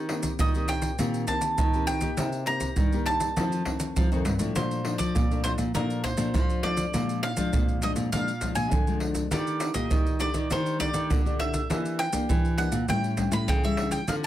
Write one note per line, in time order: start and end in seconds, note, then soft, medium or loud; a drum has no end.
0.00 0.31 D#3 medium
0.00 0.37 D#3 soft
0.09 0.37 A#3 medium
0.09 0.38 C4 medium
0.09 0.38 G4 medium
0.09 pandeiro medium
0.23 pandeiro medium
0.23 maracas medium
0.23 surdo soft
0.39 0.96 A#2 medium
0.39 0.90 D#3 medium
0.39 0.67 D#5 medium
0.39 pandeiro medium
0.39 maracas medium
0.39 surdo loud
0.54 0.95 A#3 medium
0.54 0.95 C4 medium
0.54 0.95 G4 medium
0.54 pandeiro soft
0.54 maracas soft
0.68 1.27 G5 medium
0.68 pandeiro medium
0.68 maracas medium
0.82 pandeiro medium
0.82 maracas medium
0.82 surdo soft
0.99 1.24 A#2 loud
0.99 1.55 D#3 medium
0.99 1.24 A#3 medium
0.99 1.24 C4 medium
0.99 1.24 G4 medium
0.99 pandeiro medium
0.99 maracas medium
0.99 surdo medium
1.14 pandeiro soft
1.14 maracas soft
1.27 1.56 A#3 medium
1.27 1.56 C4 soft
1.27 1.57 G4 medium
1.27 1.84 A5 medium
1.27 pandeiro medium
1.27 maracas medium
1.27 surdo soft
1.41 pandeiro medium
1.41 maracas medium
1.58 2.15 A#2 medium
1.58 2.09 D#3 loud
1.58 pandeiro medium
1.58 maracas medium
1.58 surdo loud
1.74 1.99 A#3 medium
1.74 1.99 C4 medium
1.74 1.99 G4 medium
1.74 pandeiro soft
1.74 maracas soft
1.87 2.43 G5 medium
1.87 pandeiro medium
1.87 maracas medium
1.87 surdo soft
2.01 2.42 A#3 medium
2.01 2.42 D#4 medium
2.01 2.42 G4 medium
2.01 pandeiro medium
2.01 maracas medium
2.01 surdo soft
2.17 2.68 C3 medium
2.17 2.74 C3 soft
2.17 pandeiro medium
2.17 maracas medium
2.17 surdo medium
2.33 pandeiro soft
2.33 maracas soft
2.46 2.75 A#3 medium
2.46 2.75 D#4 medium
2.46 2.75 G4 medium
2.46 3.06 A#5 loud
2.46 pandeiro medium
2.60 pandeiro medium
2.60 maracas medium
2.60 surdo soft
2.76 3.34 G2 medium
2.76 3.28 D#3 medium
2.76 pandeiro medium
2.76 maracas medium
2.76 surdo medium
2.92 3.33 A#3 medium
2.92 3.33 D#4 medium
2.92 3.33 G4 medium
2.92 pandeiro soft
2.92 maracas soft
3.06 4.22 A5 medium
3.06 pandeiro medium
3.20 pandeiro medium
3.20 maracas medium
3.20 surdo soft
3.37 3.93 F2 soft
3.37 3.62 D#3 soft
3.37 3.62 F3 medium
3.37 3.62 A3 medium
3.37 3.62 C4 medium
3.37 pandeiro medium
3.37 maracas medium
3.37 surdo medium
3.52 pandeiro soft
3.52 maracas soft
3.65 4.06 D#3 soft
3.65 4.06 A3 medium
3.65 4.06 C4 medium
3.65 pandeiro medium
3.65 surdo soft
3.80 pandeiro medium
3.80 maracas medium
3.96 4.53 C3 medium
3.96 4.09 F3 loud
3.96 pandeiro medium
3.96 maracas medium
3.96 surdo loud
4.12 4.25 F2 medium
4.12 4.36 D#3 medium
4.12 4.36 A3 medium
4.12 4.37 C4 medium
4.12 pandeiro soft
4.12 maracas soft
4.25 4.39 G2 medium
4.25 pandeiro medium
4.25 maracas medium
4.39 4.53 A2 medium
4.39 4.80 F3 medium
4.39 4.80 A3 medium
4.39 4.80 D4 medium
4.39 pandeiro medium
4.39 maracas medium
4.39 surdo soft
4.55 5.12 A#2 soft
4.55 4.94 A#2 medium
4.55 4.98 C5 medium
4.55 pandeiro medium
4.55 maracas medium
4.55 surdo medium
4.71 pandeiro soft
4.71 maracas soft
4.84 5.24 F3 medium
4.84 5.25 A3 soft
4.84 5.25 D4 medium
4.84 pandeiro medium
4.98 5.12 F3 medium
4.98 5.43 D5 medium
4.98 pandeiro medium
4.98 maracas medium
4.98 surdo soft
5.15 5.71 F2 medium
5.15 5.53 A#2 medium
5.15 pandeiro medium
5.15 maracas medium
5.15 surdo medium
5.31 5.40 F3 medium
5.31 5.41 A3 medium
5.31 5.41 D4 medium
5.31 pandeiro soft
5.31 maracas soft
5.44 5.62 F3 medium
5.44 5.62 A3 medium
5.44 5.62 D4 medium
5.44 5.52 C5 medium
5.44 pandeiro medium
5.44 maracas medium
5.58 5.71 A#2 medium
5.58 pandeiro medium
5.58 maracas medium
5.58 surdo soft
5.74 6.31 A#2 medium
5.74 6.13 A#2 medium
5.74 6.03 F3 medium
5.74 6.03 A3 medium
5.74 6.03 D4 medium
5.74 6.02 A#4 medium
5.74 pandeiro medium
5.74 maracas medium
5.74 surdo medium
5.90 pandeiro soft
5.90 maracas soft
6.04 6.60 C5 medium
6.04 pandeiro medium
6.04 surdo soft
6.17 6.33 A#2 medium
6.17 6.28 F3 medium
6.17 6.29 A3 medium
6.17 6.29 D4 medium
6.17 pandeiro medium
6.17 maracas medium
6.34 6.91 F2 medium
6.34 6.85 F3 loud
6.34 6.59 F3 medium
6.34 6.59 A3 soft
6.34 6.59 D4 medium
6.34 pandeiro medium
6.34 maracas medium
6.34 surdo medium
6.49 pandeiro soft
6.49 maracas soft
6.63 6.91 F3 soft
6.63 6.91 A3 medium
6.63 6.92 D4 medium
6.63 7.19 D5 medium
6.63 pandeiro medium
6.63 surdo soft
6.77 pandeiro medium
6.77 maracas medium
6.77 surdo soft
6.94 7.32 A#2 medium
6.94 7.51 A#2 soft
6.94 7.22 F3 soft
6.94 7.22 G#3 medium
6.94 7.22 D4 soft
6.94 pandeiro medium
6.94 maracas medium
6.94 surdo medium
7.09 pandeiro soft
7.09 maracas soft
7.23 7.84 F5 loud
7.23 pandeiro medium
7.37 7.50 F3 medium
7.37 7.78 F3 soft
7.37 7.78 G#3 medium
7.37 7.78 D4 medium
7.37 pandeiro medium
7.37 maracas medium
7.37 surdo soft
7.53 8.10 F2 medium
7.53 7.91 A#2 medium
7.53 pandeiro medium
7.53 maracas medium
7.53 surdo loud
7.68 pandeiro soft
7.68 maracas soft
7.82 8.08 F3 medium
7.82 8.08 G#3 medium
7.82 8.08 D4 medium
7.82 7.91 D#5 medium
7.82 pandeiro medium
7.82 maracas medium
7.96 8.09 A#2 medium
7.96 pandeiro medium
7.96 maracas medium
7.96 surdo soft
8.12 8.51 A#2 medium
8.12 8.70 A#2 medium
8.12 8.31 F3 soft
8.12 8.31 G#3 medium
8.12 8.31 D4 medium
8.12 8.54 F5 loud
8.12 pandeiro medium
8.12 maracas medium
8.12 surdo medium
8.28 pandeiro soft
8.28 maracas soft
8.41 8.82 F3 soft
8.41 8.82 G#3 medium
8.41 8.82 D4 medium
8.41 pandeiro medium
8.41 maracas medium
8.41 surdo soft
8.55 8.72 A#2 medium
8.55 8.98 G#5 medium
8.55 pandeiro medium
8.55 maracas medium
8.72 9.29 F2 medium
8.72 9.22 D3 medium
8.72 pandeiro medium
8.72 maracas medium
8.72 surdo loud
8.87 9.27 F3 medium
8.87 9.27 G#3 medium
8.87 9.27 D4 medium
8.87 pandeiro soft
8.87 maracas soft
9.00 pandeiro medium
9.15 pandeiro medium
9.15 maracas medium
9.15 surdo soft
9.31 9.69 D#3 medium
9.31 9.88 D#3 soft
9.31 9.72 A3 medium
9.31 9.72 D4 medium
9.31 9.72 G4 medium
9.31 9.73 D5 medium
9.31 pandeiro medium
9.31 maracas medium
9.31 surdo medium
9.47 pandeiro soft
9.47 maracas soft
9.60 pandeiro medium
9.60 maracas medium
9.74 9.88 A#2 medium
9.74 10.15 A3 medium
9.74 10.16 G4 medium
9.74 10.20 D#5 medium
9.74 pandeiro medium
9.74 maracas medium
9.74 surdo soft
9.91 10.48 A#2 medium
9.91 10.29 D#3 medium
9.91 pandeiro medium
9.91 maracas medium
9.91 surdo loud
10.06 pandeiro soft
10.06 maracas soft
10.20 10.38 A3 soft
10.20 10.38 D4 medium
10.20 10.38 G4 medium
10.20 10.51 D5 medium
10.20 pandeiro medium
10.20 maracas medium
10.34 10.47 D#3 medium
10.34 pandeiro medium
10.34 maracas medium
10.34 surdo soft
10.51 11.07 D#3 medium
10.51 10.89 D#3 medium
10.51 10.76 A3 medium
10.51 10.76 D4 medium
10.51 10.76 G4 medium
10.51 10.80 C5 medium
10.51 pandeiro medium
10.51 maracas medium
10.51 surdo medium
10.66 pandeiro soft
10.66 maracas soft
10.79 11.20 A3 medium
10.79 11.20 D4 medium
10.79 11.20 G4 medium
10.79 11.39 D5 medium
10.79 pandeiro medium
10.79 maracas medium
10.79 surdo soft
10.94 11.10 D#3 medium
10.94 pandeiro medium
10.94 maracas medium
11.10 11.67 A#2 medium
11.10 11.61 D3 medium
11.10 pandeiro medium
11.10 maracas medium
11.10 surdo loud
11.25 11.65 A3 medium
11.25 11.65 D4 medium
11.25 11.65 G4 medium
11.25 pandeiro soft
11.25 maracas soft
11.39 12.01 E5 medium
11.39 pandeiro medium
11.39 surdo soft
11.54 pandeiro medium
11.54 maracas medium
11.54 surdo soft
11.69 12.26 E3 soft
11.69 12.08 E3 medium
11.69 11.98 A#3 medium
11.69 11.98 D4 soft
11.69 11.98 G4 medium
11.69 pandeiro medium
11.69 maracas medium
11.69 surdo medium
11.85 pandeiro soft
11.85 maracas soft
11.99 12.58 G5 loud
11.99 pandeiro medium
12.12 12.53 A#3 medium
12.12 12.26 A#3 medium
12.12 12.53 D4 medium
12.12 12.54 G4 medium
12.12 pandeiro medium
12.12 maracas medium
12.12 surdo soft
12.29 12.86 E3 medium
12.29 12.67 E3 medium
12.29 pandeiro medium
12.29 maracas medium
12.29 surdo loud
12.45 pandeiro soft
12.45 maracas soft
12.58 12.76 A#3 medium
12.58 12.76 D4 medium
12.58 12.76 G4 medium
12.58 12.89 F#5 medium
12.58 pandeiro medium
12.72 12.85 A#2 medium
12.72 pandeiro medium
12.72 maracas medium
12.72 surdo soft
12.88 13.45 A2 medium
12.88 13.27 A2 medium
12.88 13.14 G3 medium
12.88 13.14 C#4 medium
12.88 13.14 E4 medium
12.88 13.33 G5 loud
12.88 pandeiro medium
12.88 maracas medium
12.88 surdo medium
13.04 pandeiro soft
13.04 maracas soft
13.17 13.46 G3 medium
13.17 13.46 C#4 medium
13.17 13.46 E4 medium
13.17 pandeiro medium
13.17 maracas medium
13.17 surdo soft
13.32 13.48 A2 medium
13.32 13.47 B5 medium
13.32 pandeiro medium
13.32 maracas medium
13.48 13.99 C#3 loud
13.48 14.05 E3 medium
13.48 13.64 G5 medium
13.48 pandeiro medium
13.48 maracas medium
13.48 surdo loud
13.64 14.04 G3 medium
13.64 14.04 C#4 medium
13.64 14.04 E4 medium
13.64 13.92 E5 medium
13.64 pandeiro soft
13.64 maracas soft
13.77 pandeiro medium
13.77 surdo soft
13.91 14.08 G5 medium
13.91 pandeiro medium
13.91 maracas medium
13.91 surdo soft
14.08 14.27 D3 medium
14.08 14.27 D3 soft
14.08 14.27 C4 soft
14.08 14.27 F4 soft
14.08 14.27 A4 soft
14.08 14.14 F5 medium
14.08 pandeiro medium
14.08 maracas medium
14.08 surdo medium
14.24 pandeiro soft
14.24 maracas soft